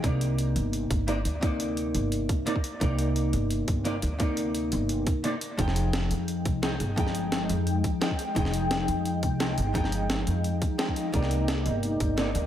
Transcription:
<<
  \new Staff \with { instrumentName = "Ambient pad" } { \time 4/4 \key f \minor \tempo 4 = 173 r1 | r1 | r1 | r1 |
<aes ees' g''>1~ | <aes ees' g''>1~ | <aes ees' g''>1~ | <aes ees' g''>1 |
<bes d''>1 | }
  \new Staff \with { instrumentName = "Hollow-body jazz guitar" } { \time 4/4 \key f \minor <c bes ees' d''>2. <c bes ees' d''>16 r8. | <c bes ees' d''>2. <c bes ees' d''>16 r8. | <c bes ees' d''>2. <c bes ees' d''>16 r8. | <c bes ees' d''>2. <c bes ees' d''>16 r8. |
<f ees' aes' g''>2. <f ees' aes' g''>16 r8. | <f ees' aes' g''>2. <f ees' aes' g''>16 r8. | <f ees' aes' g''>2. <f ees' aes' g''>16 r8. | <f ees' aes' g''>2. <f ees' aes' g''>4 |
<c bes ees' d''>2. <c bes ees' d''>16 r8. | }
  \new Staff \with { instrumentName = "Upright bass" } { \clef bass \time 4/4 \key f \minor c,4. g,,4 g,,4 d,8~ | d,4. g,,4 r4. | c,4. g,,4 g,,4 d,8~ | d,4. g,,4 r4. |
f,,4. f,4 c,4 g,,8~ | g,,4. f,4 r4. | f,,4. f,4 c,4 g,,8~ | g,,4. f,4 r4. |
c,4. g,,4 g,,4 d,8 | }
  \new DrumStaff \with { instrumentName = "Drums" } \drummode { \time 4/4 <hh bd>8 hh8 hh8 hh8 hh8 <hh bd>8 hh8 hh8 | <hh bd>8 hh8 hh8 hh8 hh8 <hh bd>8 hh16 bd16 hh8 | <hh bd>8 hh8 hh8 hh8 hh8 <hh bd>8 hh8 hh8 | <hh bd>8 hh8 hh8 hh8 hh8 <hh bd>8 hh8 hh8 |
<hh bd>16 sn16 hh8 <hh sn>8 hh8 hh8 <hh bd>8 <hh sn>8 hh8 | <hh bd>16 sn16 hh8 <hh sn>8 hh8 hh8 <hh bd>8 <hh sn>16 bd16 hh8 | <hh bd>16 sn16 hh8 <hh sn>8 hh8 hh8 <hh bd>8 <hh sn>8 hh8 | <hh bd>16 sn16 hh8 <hh sn>8 hh8 hh8 <hh bd>8 <hh sn>16 bd16 hh8 |
<hh bd>16 sn16 hh8 <hh sn>8 hh8 hh8 <hh bd>8 <hh sn>8 hh8 | }
>>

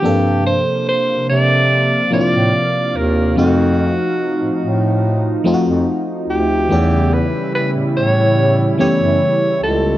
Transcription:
<<
  \new Staff \with { instrumentName = "Alto saxophone" } { \time 4/4 \key f \mixolydian \tempo 4 = 72 g'8 c''8 c''8 d''4 d''4 bes'8 | ges'2 r4. g'8~ | g'8 b'8 b'8 cis''4 cis''4 a'8 | }
  \new Staff \with { instrumentName = "FM electric piano" } { \time 4/4 \key f \mixolydian <f bes c' d' a'>4. r4 <f bes c' d' e' f'>4 r8 | <f aes a c' ees' ges'>4. r4 <f a c' ees' f' ges'>4 r8 | <e a b cis' g'>4. r4 <e a b cis' g'>4 r8 | }
  \new Staff \with { instrumentName = "Analog synth pad" } { \clef bass \time 4/4 \key f \mixolydian << { f''1~ | f''1 | e'1 | } \\ { <c bes>1 | <f ees'>1 | <cis g>1 | } >> }
  \new Staff \with { instrumentName = "Bass clarinet" } { \clef bass \time 4/4 \key f \mixolydian g,8. r8 c16 c4 a,16 a,16 r8 ees,8 | f,8. r8 a,16 a,4 f,16 f,16 r8 d,8 | e,8. r8 a,16 a,4 fis,16 fis,16 r8 cis,8 | }
>>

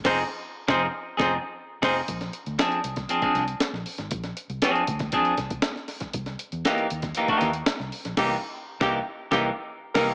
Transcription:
<<
  \new Staff \with { instrumentName = "Tenor saxophone" } { \time 4/4 \key bes \mixolydian \tempo 4 = 118 c''8 r8. c''8 r8 c''8 r8. c''8 | r1 | r1 | r1 |
g'8 r8. g'8 r8 g'8 r8. bes'8 | }
  \new Staff \with { instrumentName = "Clean electric guitar" } { \time 4/4 \key bes \mixolydian <f c' ees' aes'>8 r8. <f c' ees' aes'>8 r8 <f c' ees' aes'>8 r8. <f c' ees' aes'>8 | r4 <f c' d' aes'>8 r8 <f c' d' aes'>16 <f c' d' aes'>8 r4 r16 | r4 <f c' d' aes'>8 r8 <f c' d' aes'>8 r4. | r4 <e bes dis' g'>8 r8 <e bes dis' g'>16 <e bes dis' g'>8 r4 r16 |
<e bes dis' g'>8 r8. <e bes dis' g'>8 r8 <e bes dis' g'>8 r8. <e bes dis' g'>8 | }
  \new Staff \with { instrumentName = "Fingered electric bass" } { \clef bass \time 4/4 \key bes \mixolydian f,,8 r8. f,,8 r8 f,,8 r8. f,,8 | bes,,8 r16 d,16 r8 c,8 r8 c,8 r16 bes,,16 r16 aes,,16 | bes,,8 r16 c,16 r8 d,8 r8 c,8 r4 | c,8 r16 e,16 r8 dis,8 r8 dis,8 r16 c,16 r16 bes,,16 |
c,8 r8. c,8 r8 c,8 r8. c,8 | }
  \new DrumStaff \with { instrumentName = "Drums" } \drummode { \time 4/4 <cymc bd sn>4 r16 <bd sn>8. r16 <bd sn>8. r8 <cymc bd sn>8 | <hh bd>16 <hh sn>16 hh16 hh16 <hh sn>16 hh16 hh16 <hh bd sn>16 hh16 <hh bd>16 <hh sn>16 hh16 <hh sn>16 sn16 hho16 <hh sn>16 | <hh bd>16 <hh sn>16 hh16 hh16 <hh sn>16 hh16 <hh bd>16 <hh bd sn>16 <hh bd>16 hh16 <hh bd sn>16 <hh bd>16 <hh sn>16 sn16 <hho sn>16 <hh bd sn>16 | <hh bd>16 <hh sn>16 hh16 hh16 <hh sn>16 hh16 hh16 <hh bd sn>16 hh16 <hh bd>16 <hh sn>16 hh16 <hh sn>16 sn16 hho16 <hh sn>16 |
<cymc bd sn>4 r16 <bd sn>8. r16 <bd sn>8. r8 <cymc bd sn>8 | }
>>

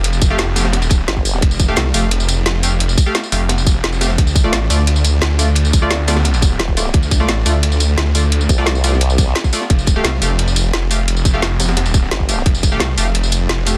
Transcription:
<<
  \new Staff \with { instrumentName = "Synth stab" } { \time 4/4 \key f \major \tempo 4 = 174 r8. <a g' f''>8 r16 <a g' f''>16 r2 r16 | r8. <a g' f''>8 r16 <a g' f''>16 r4. r16 <a g' f''>16 r16 | r8. <a g' f''>8 r16 <a g' f''>16 r4. r16 <a g' f''>16 r16 | r8. <a f' d''>8 r16 <a f' d''>16 r4. r16 <a f' d''>16 r16 |
r8. <a f' d''>8 r16 <a f' d''>16 r4. r16 <a f' d''>16 r16 | r8. <a f' d''>8 r16 <a f' d''>16 r4. r16 <a f' d''>16 r16 | r8. <a f' d''>8 r16 <a f' d''>16 r4. r16 <a f' d''>16 r16 | r8. <a g' f''>8 r16 <a g' f''>16 r4. r16 <a g' f''>16 r16 |
r8. <a g' f''>8 r2 r16 <a g' f''>16 r16 | r8. <a g' f''>8 r16 <a g' f''>16 r4. r16 <a g' f''>16 r16 | }
  \new Staff \with { instrumentName = "Wobble bass" } { \clef bass \time 4/4 \key f \major r2. g,,4 | r1 | r1 | r1 |
r2. e,,4 | r1 | r8 c,2~ c,8 r4 | r1 |
r2. g,,4 | r1 | }
  \new Staff \with { instrumentName = "Detuned saw bass" } { \clef bass \time 4/4 \key f \major f,,8 f,,2~ f,,8 r4 | f,,4 c,8 f,,4. f,,4~ | f,,8 r4 f,,2~ f,,8 | d,4 a,,8 d,4. d,4~ |
d,8 d,2~ d,8 r4 | d,4 a,,8 d,4. d,4~ | d,8 r2. r8 | f,,4 c,8 f,,4. f,,4~ |
f,,8 f,,2~ f,,8 r4 | f,,4 c,8 f,,4. f,,4 | }
  \new DrumStaff \with { instrumentName = "Drums" } \drummode { \time 4/4 <hh cymr>16 tamb16 <hh bd cymr tamb>8 <hh cymr sn>8 <hho cymr sn tamb>16 <cymr sn>16 <hh cymr sn>16 <cymr tamb>16 <hh bd cymr sn tamb>16 sn16 <hh cymr sn>16 <bd sn>16 <hho cymr tamb>16 sn16 | <hh bd cymr>16 tamb16 <hh bd cymr tamb>8 <hh cymr sn>8 <hho cymr tamb>8 <hh cymr>16 tamb16 <hh cymr tamb>8 <hh cymr sn>16 cymr16 <hho cymr tamb>8 | <hh cymr>16 tamb16 <hh bd cymr tamb>8 <hh cymr sn>16 tamb16 <hho cymr tamb>8 <hh cymr sn>16 tamb16 <hh bd cymr sn tamb>16 sn16 <hh cymr sn>16 <sn tamb>16 <hho cymr sn tamb>16 <cymr sn>16 | <hh bd cymr>16 tamb16 <hh bd cymr tamb>8 <hh cymr sn>8 <hho cymr tamb>8 <hh cymr>16 tamb16 <hh cymr tamb>8 <hh cymr sn>16 cymr16 <hho cymr tamb>8 |
<hh cymr>16 tamb16 <hh bd cymr tamb>8 <hh cymr sn>8 <hho cymr sn tamb>16 <cymr sn>16 <hh cymr sn>16 <cymr tamb>16 <hh bd cymr sn tamb>16 sn16 <hh cymr sn>16 <bd sn>16 <hho cymr tamb>16 sn16 | <hh bd cymr>16 tamb16 <hh bd cymr tamb>8 <hh cymr sn>8 <hho cymr tamb>8 <hh cymr>16 tamb16 <hh cymr tamb>8 <hh cymr sn>16 cymr16 <hho cymr tamb>8 | <hh cymr>16 tamb16 <hh bd cymr tamb>8 <hh cymr sn>16 tamb16 <hho cymr tamb>16 sn16 <hh cymr>16 tamb16 <hh bd cymr sn tamb>16 sn16 <hh cymr sn>16 <bd sn tamb>16 <hho cymr tamb>16 sn16 | <hh bd cymr>16 tamb16 <hh bd cymr tamb>8 <hh cymr sn>8 <hho cymr tamb>8 <hh cymr>16 tamb16 <hh cymr tamb>8 <hh cymr sn>16 cymr16 <hho cymr tamb>8 |
<hh cymr>16 tamb16 <hh bd cymr tamb>8 <hh cymr sn>8 <hho cymr sn tamb>16 <cymr sn>16 <hh cymr sn>16 <cymr tamb>16 <hh bd cymr sn tamb>16 sn16 <hh cymr sn>16 <bd sn>16 <hho cymr tamb>16 sn16 | <hh bd cymr>16 tamb16 <hh bd cymr tamb>8 <hh cymr sn>8 <hho cymr tamb>8 <hh cymr>16 tamb16 <hh cymr tamb>8 <hh cymr sn>16 cymr16 <hho cymr tamb>8 | }
>>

